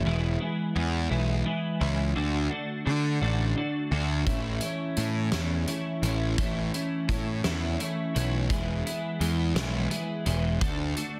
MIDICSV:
0, 0, Header, 1, 4, 480
1, 0, Start_track
1, 0, Key_signature, 3, "major"
1, 0, Tempo, 704225
1, 35, Time_signature, 6, 3, 24, 8
1, 7632, End_track
2, 0, Start_track
2, 0, Title_t, "Clean electric guitar"
2, 0, Program_c, 0, 27
2, 36, Note_on_c, 0, 52, 84
2, 40, Note_on_c, 0, 56, 83
2, 43, Note_on_c, 0, 59, 94
2, 44, Note_on_c, 0, 64, 98
2, 263, Note_off_c, 0, 64, 0
2, 267, Note_off_c, 0, 59, 0
2, 270, Note_off_c, 0, 56, 0
2, 271, Note_off_c, 0, 52, 0
2, 271, Note_on_c, 0, 64, 77
2, 275, Note_on_c, 0, 59, 76
2, 278, Note_on_c, 0, 56, 68
2, 279, Note_on_c, 0, 52, 61
2, 503, Note_off_c, 0, 52, 0
2, 505, Note_off_c, 0, 56, 0
2, 507, Note_off_c, 0, 59, 0
2, 511, Note_off_c, 0, 64, 0
2, 511, Note_on_c, 0, 52, 65
2, 513, Note_on_c, 0, 56, 63
2, 515, Note_on_c, 0, 59, 66
2, 519, Note_on_c, 0, 64, 71
2, 740, Note_off_c, 0, 64, 0
2, 749, Note_off_c, 0, 52, 0
2, 749, Note_off_c, 0, 59, 0
2, 749, Note_on_c, 0, 64, 82
2, 750, Note_off_c, 0, 56, 0
2, 757, Note_on_c, 0, 52, 68
2, 757, Note_on_c, 0, 59, 71
2, 758, Note_on_c, 0, 56, 70
2, 979, Note_off_c, 0, 52, 0
2, 984, Note_off_c, 0, 56, 0
2, 985, Note_off_c, 0, 59, 0
2, 987, Note_off_c, 0, 64, 0
2, 987, Note_on_c, 0, 52, 72
2, 992, Note_on_c, 0, 56, 80
2, 994, Note_on_c, 0, 59, 78
2, 995, Note_on_c, 0, 64, 82
2, 1218, Note_off_c, 0, 64, 0
2, 1223, Note_off_c, 0, 59, 0
2, 1224, Note_off_c, 0, 56, 0
2, 1226, Note_off_c, 0, 52, 0
2, 1226, Note_on_c, 0, 64, 82
2, 1232, Note_on_c, 0, 56, 72
2, 1232, Note_on_c, 0, 59, 68
2, 1234, Note_on_c, 0, 52, 66
2, 1463, Note_off_c, 0, 52, 0
2, 1465, Note_on_c, 0, 50, 82
2, 1469, Note_off_c, 0, 59, 0
2, 1470, Note_off_c, 0, 56, 0
2, 1470, Note_off_c, 0, 64, 0
2, 1472, Note_on_c, 0, 62, 87
2, 1473, Note_on_c, 0, 57, 86
2, 1475, Note_on_c, 0, 66, 98
2, 1698, Note_off_c, 0, 66, 0
2, 1702, Note_off_c, 0, 57, 0
2, 1702, Note_off_c, 0, 62, 0
2, 1703, Note_off_c, 0, 50, 0
2, 1706, Note_on_c, 0, 66, 78
2, 1710, Note_on_c, 0, 62, 68
2, 1711, Note_on_c, 0, 57, 62
2, 1712, Note_on_c, 0, 50, 57
2, 1934, Note_off_c, 0, 50, 0
2, 1938, Note_off_c, 0, 57, 0
2, 1940, Note_off_c, 0, 62, 0
2, 1942, Note_off_c, 0, 66, 0
2, 1942, Note_on_c, 0, 50, 68
2, 1946, Note_on_c, 0, 57, 69
2, 1948, Note_on_c, 0, 62, 71
2, 1950, Note_on_c, 0, 66, 71
2, 2183, Note_off_c, 0, 66, 0
2, 2187, Note_off_c, 0, 62, 0
2, 2188, Note_off_c, 0, 50, 0
2, 2190, Note_off_c, 0, 57, 0
2, 2191, Note_on_c, 0, 66, 72
2, 2195, Note_on_c, 0, 62, 81
2, 2199, Note_on_c, 0, 50, 58
2, 2200, Note_on_c, 0, 57, 67
2, 2420, Note_off_c, 0, 50, 0
2, 2425, Note_off_c, 0, 57, 0
2, 2428, Note_on_c, 0, 50, 69
2, 2429, Note_off_c, 0, 62, 0
2, 2430, Note_off_c, 0, 66, 0
2, 2433, Note_on_c, 0, 57, 74
2, 2438, Note_on_c, 0, 62, 82
2, 2438, Note_on_c, 0, 66, 76
2, 2662, Note_off_c, 0, 66, 0
2, 2668, Note_off_c, 0, 62, 0
2, 2669, Note_off_c, 0, 57, 0
2, 2670, Note_on_c, 0, 66, 72
2, 2671, Note_off_c, 0, 50, 0
2, 2676, Note_on_c, 0, 62, 74
2, 2677, Note_on_c, 0, 57, 65
2, 2681, Note_on_c, 0, 50, 59
2, 2902, Note_off_c, 0, 57, 0
2, 2904, Note_off_c, 0, 50, 0
2, 2907, Note_on_c, 0, 52, 82
2, 2910, Note_off_c, 0, 62, 0
2, 2910, Note_on_c, 0, 57, 86
2, 2911, Note_off_c, 0, 66, 0
2, 2912, Note_on_c, 0, 61, 89
2, 2917, Note_on_c, 0, 64, 92
2, 3144, Note_off_c, 0, 61, 0
2, 3144, Note_off_c, 0, 64, 0
2, 3150, Note_off_c, 0, 52, 0
2, 3150, Note_off_c, 0, 57, 0
2, 3152, Note_on_c, 0, 61, 76
2, 3152, Note_on_c, 0, 64, 77
2, 3158, Note_on_c, 0, 52, 59
2, 3158, Note_on_c, 0, 57, 64
2, 3380, Note_off_c, 0, 52, 0
2, 3385, Note_off_c, 0, 57, 0
2, 3388, Note_on_c, 0, 52, 64
2, 3389, Note_off_c, 0, 61, 0
2, 3389, Note_off_c, 0, 64, 0
2, 3393, Note_on_c, 0, 57, 64
2, 3397, Note_on_c, 0, 61, 66
2, 3397, Note_on_c, 0, 64, 75
2, 3620, Note_off_c, 0, 64, 0
2, 3624, Note_off_c, 0, 61, 0
2, 3626, Note_off_c, 0, 57, 0
2, 3628, Note_on_c, 0, 64, 77
2, 3630, Note_off_c, 0, 52, 0
2, 3632, Note_on_c, 0, 61, 75
2, 3634, Note_on_c, 0, 57, 63
2, 3638, Note_on_c, 0, 52, 56
2, 3859, Note_off_c, 0, 52, 0
2, 3860, Note_off_c, 0, 57, 0
2, 3863, Note_off_c, 0, 61, 0
2, 3865, Note_off_c, 0, 64, 0
2, 3868, Note_on_c, 0, 52, 68
2, 3869, Note_on_c, 0, 57, 74
2, 3871, Note_on_c, 0, 61, 78
2, 3874, Note_on_c, 0, 64, 77
2, 4107, Note_off_c, 0, 64, 0
2, 4110, Note_off_c, 0, 52, 0
2, 4110, Note_off_c, 0, 61, 0
2, 4111, Note_off_c, 0, 57, 0
2, 4115, Note_on_c, 0, 64, 75
2, 4118, Note_on_c, 0, 61, 78
2, 4119, Note_on_c, 0, 57, 60
2, 4124, Note_on_c, 0, 52, 61
2, 4347, Note_off_c, 0, 52, 0
2, 4349, Note_off_c, 0, 57, 0
2, 4353, Note_off_c, 0, 61, 0
2, 4354, Note_off_c, 0, 64, 0
2, 4355, Note_on_c, 0, 52, 90
2, 4357, Note_on_c, 0, 57, 92
2, 4361, Note_on_c, 0, 61, 89
2, 4364, Note_on_c, 0, 64, 97
2, 4583, Note_off_c, 0, 64, 0
2, 4588, Note_off_c, 0, 61, 0
2, 4592, Note_on_c, 0, 64, 74
2, 4594, Note_off_c, 0, 52, 0
2, 4595, Note_off_c, 0, 57, 0
2, 4596, Note_on_c, 0, 61, 69
2, 4602, Note_on_c, 0, 52, 59
2, 4603, Note_on_c, 0, 57, 69
2, 4823, Note_off_c, 0, 52, 0
2, 4827, Note_off_c, 0, 57, 0
2, 4828, Note_off_c, 0, 61, 0
2, 4832, Note_on_c, 0, 52, 61
2, 4833, Note_off_c, 0, 64, 0
2, 4835, Note_on_c, 0, 57, 67
2, 4836, Note_on_c, 0, 61, 70
2, 4839, Note_on_c, 0, 64, 71
2, 5065, Note_off_c, 0, 64, 0
2, 5069, Note_off_c, 0, 61, 0
2, 5072, Note_off_c, 0, 57, 0
2, 5073, Note_off_c, 0, 52, 0
2, 5073, Note_on_c, 0, 64, 81
2, 5078, Note_on_c, 0, 61, 72
2, 5080, Note_on_c, 0, 57, 71
2, 5082, Note_on_c, 0, 52, 61
2, 5305, Note_off_c, 0, 52, 0
2, 5309, Note_off_c, 0, 57, 0
2, 5311, Note_off_c, 0, 61, 0
2, 5313, Note_off_c, 0, 64, 0
2, 5313, Note_on_c, 0, 52, 74
2, 5318, Note_on_c, 0, 57, 80
2, 5319, Note_on_c, 0, 61, 75
2, 5321, Note_on_c, 0, 64, 83
2, 5542, Note_off_c, 0, 64, 0
2, 5546, Note_off_c, 0, 61, 0
2, 5550, Note_off_c, 0, 52, 0
2, 5550, Note_off_c, 0, 57, 0
2, 5550, Note_on_c, 0, 64, 80
2, 5554, Note_on_c, 0, 61, 70
2, 5558, Note_on_c, 0, 57, 70
2, 5559, Note_on_c, 0, 52, 57
2, 5783, Note_off_c, 0, 52, 0
2, 5791, Note_on_c, 0, 52, 86
2, 5792, Note_off_c, 0, 57, 0
2, 5792, Note_off_c, 0, 64, 0
2, 5793, Note_off_c, 0, 61, 0
2, 5795, Note_on_c, 0, 56, 96
2, 5795, Note_on_c, 0, 59, 93
2, 5801, Note_on_c, 0, 64, 104
2, 6030, Note_off_c, 0, 64, 0
2, 6033, Note_off_c, 0, 52, 0
2, 6033, Note_off_c, 0, 59, 0
2, 6035, Note_off_c, 0, 56, 0
2, 6038, Note_on_c, 0, 64, 80
2, 6042, Note_on_c, 0, 59, 78
2, 6045, Note_on_c, 0, 56, 71
2, 6048, Note_on_c, 0, 52, 63
2, 6261, Note_off_c, 0, 52, 0
2, 6267, Note_off_c, 0, 56, 0
2, 6269, Note_off_c, 0, 59, 0
2, 6269, Note_on_c, 0, 52, 65
2, 6272, Note_off_c, 0, 64, 0
2, 6275, Note_on_c, 0, 56, 71
2, 6277, Note_on_c, 0, 59, 65
2, 6280, Note_on_c, 0, 64, 70
2, 6500, Note_off_c, 0, 64, 0
2, 6504, Note_off_c, 0, 59, 0
2, 6505, Note_off_c, 0, 56, 0
2, 6507, Note_off_c, 0, 52, 0
2, 6508, Note_on_c, 0, 64, 77
2, 6512, Note_on_c, 0, 59, 71
2, 6513, Note_on_c, 0, 56, 75
2, 6516, Note_on_c, 0, 52, 62
2, 6737, Note_off_c, 0, 52, 0
2, 6741, Note_off_c, 0, 56, 0
2, 6742, Note_off_c, 0, 64, 0
2, 6743, Note_off_c, 0, 59, 0
2, 6745, Note_on_c, 0, 52, 74
2, 6749, Note_on_c, 0, 56, 80
2, 6750, Note_on_c, 0, 64, 82
2, 6751, Note_on_c, 0, 59, 74
2, 6982, Note_off_c, 0, 64, 0
2, 6984, Note_off_c, 0, 56, 0
2, 6984, Note_off_c, 0, 59, 0
2, 6991, Note_off_c, 0, 52, 0
2, 6991, Note_on_c, 0, 64, 77
2, 6992, Note_on_c, 0, 59, 70
2, 6993, Note_on_c, 0, 56, 63
2, 6998, Note_on_c, 0, 52, 65
2, 7223, Note_off_c, 0, 52, 0
2, 7226, Note_on_c, 0, 50, 78
2, 7229, Note_off_c, 0, 56, 0
2, 7231, Note_off_c, 0, 59, 0
2, 7232, Note_on_c, 0, 57, 93
2, 7233, Note_off_c, 0, 64, 0
2, 7234, Note_on_c, 0, 62, 96
2, 7235, Note_on_c, 0, 66, 89
2, 7466, Note_off_c, 0, 66, 0
2, 7470, Note_off_c, 0, 62, 0
2, 7472, Note_off_c, 0, 50, 0
2, 7475, Note_off_c, 0, 57, 0
2, 7475, Note_on_c, 0, 66, 76
2, 7478, Note_on_c, 0, 62, 73
2, 7482, Note_on_c, 0, 57, 66
2, 7483, Note_on_c, 0, 50, 61
2, 7632, Note_off_c, 0, 50, 0
2, 7632, Note_off_c, 0, 57, 0
2, 7632, Note_off_c, 0, 62, 0
2, 7632, Note_off_c, 0, 66, 0
2, 7632, End_track
3, 0, Start_track
3, 0, Title_t, "Picked electric bass"
3, 0, Program_c, 1, 34
3, 36, Note_on_c, 1, 28, 94
3, 250, Note_off_c, 1, 28, 0
3, 516, Note_on_c, 1, 40, 82
3, 730, Note_off_c, 1, 40, 0
3, 754, Note_on_c, 1, 35, 81
3, 968, Note_off_c, 1, 35, 0
3, 1233, Note_on_c, 1, 37, 94
3, 1448, Note_off_c, 1, 37, 0
3, 1472, Note_on_c, 1, 38, 83
3, 1687, Note_off_c, 1, 38, 0
3, 1953, Note_on_c, 1, 50, 78
3, 2168, Note_off_c, 1, 50, 0
3, 2191, Note_on_c, 1, 33, 90
3, 2407, Note_off_c, 1, 33, 0
3, 2668, Note_on_c, 1, 38, 93
3, 2885, Note_off_c, 1, 38, 0
3, 2908, Note_on_c, 1, 33, 90
3, 3125, Note_off_c, 1, 33, 0
3, 3390, Note_on_c, 1, 45, 79
3, 3606, Note_off_c, 1, 45, 0
3, 3629, Note_on_c, 1, 40, 83
3, 3845, Note_off_c, 1, 40, 0
3, 4106, Note_on_c, 1, 33, 87
3, 4323, Note_off_c, 1, 33, 0
3, 4349, Note_on_c, 1, 33, 86
3, 4565, Note_off_c, 1, 33, 0
3, 4831, Note_on_c, 1, 45, 82
3, 5047, Note_off_c, 1, 45, 0
3, 5075, Note_on_c, 1, 40, 84
3, 5289, Note_off_c, 1, 40, 0
3, 5560, Note_on_c, 1, 35, 96
3, 5772, Note_off_c, 1, 35, 0
3, 6273, Note_on_c, 1, 40, 84
3, 6489, Note_off_c, 1, 40, 0
3, 6509, Note_on_c, 1, 35, 82
3, 6727, Note_off_c, 1, 35, 0
3, 6995, Note_on_c, 1, 28, 86
3, 7211, Note_off_c, 1, 28, 0
3, 7236, Note_on_c, 1, 38, 83
3, 7452, Note_off_c, 1, 38, 0
3, 7632, End_track
4, 0, Start_track
4, 0, Title_t, "Drums"
4, 2908, Note_on_c, 9, 36, 109
4, 2908, Note_on_c, 9, 42, 82
4, 2976, Note_off_c, 9, 36, 0
4, 2976, Note_off_c, 9, 42, 0
4, 3140, Note_on_c, 9, 42, 66
4, 3208, Note_off_c, 9, 42, 0
4, 3386, Note_on_c, 9, 42, 63
4, 3454, Note_off_c, 9, 42, 0
4, 3625, Note_on_c, 9, 38, 106
4, 3625, Note_on_c, 9, 42, 84
4, 3693, Note_off_c, 9, 42, 0
4, 3694, Note_off_c, 9, 38, 0
4, 3868, Note_on_c, 9, 42, 59
4, 3937, Note_off_c, 9, 42, 0
4, 4110, Note_on_c, 9, 42, 56
4, 4178, Note_off_c, 9, 42, 0
4, 4350, Note_on_c, 9, 36, 109
4, 4350, Note_on_c, 9, 42, 81
4, 4418, Note_off_c, 9, 36, 0
4, 4418, Note_off_c, 9, 42, 0
4, 4594, Note_on_c, 9, 42, 62
4, 4663, Note_off_c, 9, 42, 0
4, 4832, Note_on_c, 9, 36, 76
4, 4837, Note_on_c, 9, 42, 55
4, 4900, Note_off_c, 9, 36, 0
4, 4905, Note_off_c, 9, 42, 0
4, 5072, Note_on_c, 9, 42, 78
4, 5073, Note_on_c, 9, 38, 108
4, 5140, Note_off_c, 9, 42, 0
4, 5141, Note_off_c, 9, 38, 0
4, 5317, Note_on_c, 9, 42, 59
4, 5385, Note_off_c, 9, 42, 0
4, 5561, Note_on_c, 9, 42, 64
4, 5630, Note_off_c, 9, 42, 0
4, 5794, Note_on_c, 9, 36, 116
4, 5795, Note_on_c, 9, 42, 85
4, 5862, Note_off_c, 9, 36, 0
4, 5863, Note_off_c, 9, 42, 0
4, 6044, Note_on_c, 9, 42, 59
4, 6112, Note_off_c, 9, 42, 0
4, 6278, Note_on_c, 9, 42, 63
4, 6346, Note_off_c, 9, 42, 0
4, 6516, Note_on_c, 9, 42, 85
4, 6517, Note_on_c, 9, 38, 109
4, 6585, Note_off_c, 9, 38, 0
4, 6585, Note_off_c, 9, 42, 0
4, 6754, Note_on_c, 9, 42, 70
4, 6823, Note_off_c, 9, 42, 0
4, 6994, Note_on_c, 9, 42, 66
4, 7062, Note_off_c, 9, 42, 0
4, 7234, Note_on_c, 9, 36, 118
4, 7234, Note_on_c, 9, 42, 81
4, 7302, Note_off_c, 9, 36, 0
4, 7303, Note_off_c, 9, 42, 0
4, 7475, Note_on_c, 9, 42, 65
4, 7543, Note_off_c, 9, 42, 0
4, 7632, End_track
0, 0, End_of_file